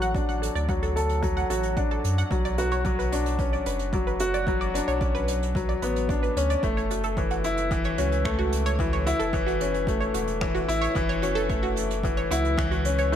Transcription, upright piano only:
Already playing: F#3 D4 F#4 A4
0.15 D4
0.69 F#3
0.96 A4
1.22 F#3
1.50 F#4
1.77 D4
2.31 F#3
2.58 F#4
2.85 F#3
3.12 D4
3.40 C#4
3.94 F#3
4.20 F#4
4.48 F#3
4.75 D4
5.02 C#4
5.56 F#3
5.83 B3
6.10 D4
6.37 C#4
6.64 A3
7.18 E3
7.45 E4
7.72 E3
7.98 C#4
8.25 A3
8.80 E3
9.07 E4
9.34 E3
9.61 C#4
9.88 A3
10.42 E3
10.68 E4
10.96 E3
11.23 C#4
11.50 A3
12.04 E3
12.31 E4
12.58 E3
12.85 C#4
13.12 A3

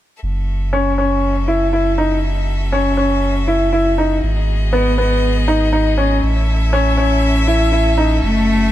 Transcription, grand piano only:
0.73 C#4
0.98 C#4
1.48 E4
1.73 E4
1.98 D#4
2.72 C#4
2.97 C#4
3.48 E4
3.73 E4
3.98 D#4
4.73 B3
4.98 B3
5.48 D#4
5.73 D#4
5.98 C#4
6.73 C#4
6.97 C#4
7.47 E4
7.72 E4
7.98 D#4

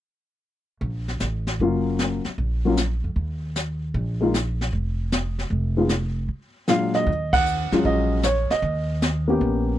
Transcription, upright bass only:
0.81 A#1
1.21 A1
1.60 F#1
2.26 muted upright bass stroke
2.38 A#1
3.04 F2
3.16 D#2
3.94 A#1
4.73 F1
5.50 F1
7.06 D#2
7.72 E2
7.85 A#1
8.51 muted upright bass stroke
8.62 D#2
9.41 A#1

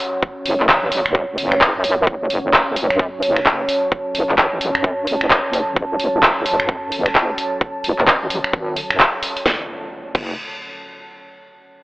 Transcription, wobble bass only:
0.46 F#1
0.69 A1
1.06 E1
1.38 F#1
1.75 F#2
2.07 F#1
2.30 F#1
2.67 F#1
2.90 F#2
3.23 F#1
4.15 F#1
4.38 A1
4.75 F#2
5.07 F#1
5.44 F#1
5.76 F#1
5.99 F#1
6.37 F#1
6.60 F#2
6.92 F#1
7.84 F#1
8.07 A1
8.44 G#1
8.90 F#2
9.46 F#1
10.15 F#1

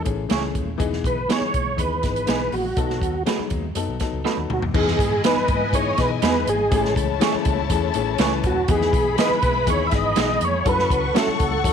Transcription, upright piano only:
0.04 E3 A3 C#4 G#4
0.29 E3 A3 C4 G#4
0.36 C#4
0.78 E3 B3 D#4 G#4
1.28 E3 B3 D#4 G4
1.35 G#4
1.77 E3 B3 D#4 G#4
2.01 E3 B3 D#4 G#4
2.26 E3 B3 D#4 G#4
2.76 F#3 B3 D#4 A4
3.25 F#3 B3 D#4 G#4
3.75 F#3 B3 D#4 A4
4.00 F#3 B3 D#4 A4
4.25 F#3 B3 C#4 A4
4.31 D#4
4.74 E3 B3 D#4 G#4
5.24 E3 B3 D#4 B4
5.73 E3 B3 D#4 G#4
5.97 E3 B3 D#4 G#4
6.22 E3 B3 D#4 F#4
6.29 G#4
6.71 E3 A3 C#4 G4
6.78 G#3
7.20 E3 G#3 A3 C#4
7.70 E3 A3 C#4 G#4
7.94 E3 A3 C#4 G#4
8.19 E3 A3 C#4 B4
8.69 E3 B3 D#4 F#4
8.75 G#4
9.17 E3 B3 D#4 G#4
9.67 E3 B3 D#4 G#4
9.91 E3 B3 D#4 G#4
10.15 E3 B3 D#4 G#4
10.65 F#3 C#4 E4 A4
11.14 F#3 C#4 E4 A4
11.63 F#3 C#4 E4 A4

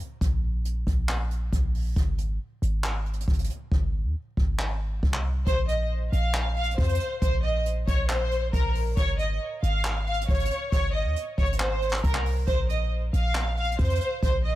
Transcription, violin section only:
5.47 C5
5.69 D#5
6.12 F5
6.56 F5
6.78 C5
7.22 C5
7.43 D#5
7.87 C#5
8.10 C5
8.53 A#4
8.97 C#5
9.19 D#5
9.63 F5
10.06 F5
10.29 C#5
10.72 C#5
10.94 D#5
11.38 C#5
11.60 C5
12.04 A#4
12.48 C5
12.69 D#5
13.13 F5
13.57 F5
13.79 C5
14.22 C5
14.44 D#5

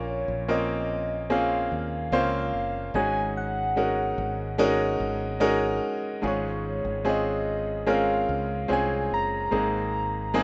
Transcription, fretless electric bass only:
Already playing: A#1
0.28 A#1
1.72 D#2
2.12 C#2
2.53 F#1
2.94 G#1
4.18 G#1
5.00 G#1
6.24 G#1
6.85 G#1
8.29 C#2
8.70 C2
9.11 F#1
9.52 G#1

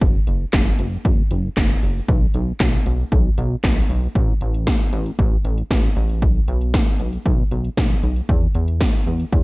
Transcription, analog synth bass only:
0.01 F#1
0.27 F#1
0.53 F#1
0.79 F#1
1.05 F#1
1.31 F#1
1.57 F#1
1.83 F#1
2.08 B1
2.34 B1
2.60 B1
2.86 B1
3.12 B1
3.38 B1
3.64 B1
3.89 B1
4.15 A1
4.41 A1
4.93 A1
5.19 A1
5.45 A1
5.71 A1
5.96 A1
6.22 B1
6.48 B1
7.00 B1
7.26 B1
7.51 B1
7.77 B1
8.03 B1
8.29 E2
8.55 E2
9.07 E2
9.33 E2

